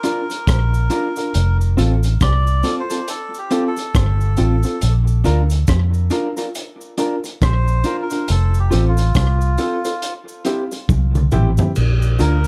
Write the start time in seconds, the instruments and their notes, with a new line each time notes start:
Already playing: melodica A#4
0.03 clean electric guitar D4 F4 A#4, upright piano D4 F4 A#4, closed hi-hat, cabasa
0.30 muted clean electric guitar stroke, closed hi-hat, cabasa
0.47 fingered electric bass A#1, kick, cross-stick, closed hi-hat, cabasa
0.74 cabasa
0.90 clean electric guitar D4 F4 A#4, upright piano D4 F4 A#4, closed hi-hat, cabasa
1.16 upright piano D4 F4 A#4, closed hi-hat, cabasa
1.34 fingered electric bass F1, closed hi-hat, cabasa
1.61 cabasa
1.77 fingered electric bass A1, upright piano C4 F4 A4, clean electric guitar C4 F4 A4, closed hi-hat, cabasa
2.03 closed hi-hat, cabasa
2.21 fingered electric bass C2, melodica D5, kick, cross-stick, closed hi-hat, cabasa
2.47 cabasa
2.63 clean electric guitar C4 F4 A4, upright piano C4 F4 A4, closed hi-hat, cabasa
2.80 melodica C5
2.90 clean electric guitar C4 F4 A4, closed hi-hat, cabasa
3.08 melodica A4, closed hi-hat, cabasa
3.34 cabasa
3.38 melodica G4
3.51 clean electric guitar C4 F4 A4, upright piano C4 F4 A4, closed hi-hat, cabasa
3.67 melodica A4
3.77 muted clean electric guitar stroke, closed hi-hat, cabasa
3.95 fingered electric bass G1, kick, cross-stick, closed hi-hat, cabasa
4.21 cabasa
4.37 fingered electric bass A1, upright piano C4 F4 A4, clean electric guitar C4 F4 A4, closed hi-hat, cabasa
4.63 upright piano C4 F4 A4, closed hi-hat, cabasa
4.81 fingered electric bass A#1, closed hi-hat, cabasa
5.07 cabasa
5.24 fingered electric bass D2, clean electric guitar D4 F4 A#4, upright piano D4 F4 A#4, closed hi-hat, cabasa
5.50 closed hi-hat, cabasa
5.67 fingered electric bass F2, kick, cross-stick, closed hi-hat, cabasa
5.94 cabasa
6.10 clean electric guitar D4 F4 A#4, upright piano D4 F4 A#4, closed hi-hat, cabasa
6.37 clean electric guitar D4 F4 A#4, closed hi-hat, cabasa
6.55 closed hi-hat, cabasa
6.81 cabasa
6.98 clean electric guitar D4 F4 A#4, upright piano D4 F4 A#4, closed hi-hat, cabasa
7.24 muted clean electric guitar stroke, closed hi-hat, cabasa
7.42 fingered electric bass A#1, melodica C5, kick, cross-stick, closed hi-hat, cabasa
7.68 cabasa
7.84 clean electric guitar D4 F4 A#4, upright piano D4 F4 A#4, closed hi-hat, cabasa
8.02 melodica A#4
8.10 upright piano D4 F4 A#4, closed hi-hat, cabasa
8.28 fingered electric bass F1, melodica A4, closed hi-hat, cabasa
8.54 cabasa
8.59 melodica G4
8.71 fingered electric bass A1, upright piano C4 F4 A4, clean electric guitar F4 A4 C5, closed hi-hat, cabasa
8.88 melodica F4
8.97 closed hi-hat, cabasa
9.15 fingered electric bass C2, kick, cross-stick, closed hi-hat, cabasa
9.41 cabasa
9.58 upright piano C4 F4 A4, clean electric guitar F4 A4 C5, closed hi-hat, cabasa
9.85 clean electric guitar F4 A4 C5, closed hi-hat, cabasa
10.02 closed hi-hat, cabasa
10.28 cabasa
10.45 upright piano C4 E4 G4, clean electric guitar E4 G4 C5, closed hi-hat, cabasa
10.71 muted clean electric guitar stroke, closed hi-hat, cabasa
10.89 fingered electric bass C2, kick, high tom, cabasa
11.15 mid tom, cabasa
11.31 fingered electric bass A1, upright piano C4 E4 G4, clean electric guitar E4 G4 C5, mid tom, cabasa
11.57 upright piano C4 E4 G4, floor tom, cabasa
11.76 fingered electric bass A#1, crash, cabasa
12.02 cabasa
12.19 fingered electric bass D2, upright piano D4 F4 A#4, clean electric guitar D4 F4 A#4, melodica A#4, closed hi-hat, cabasa
12.44 cabasa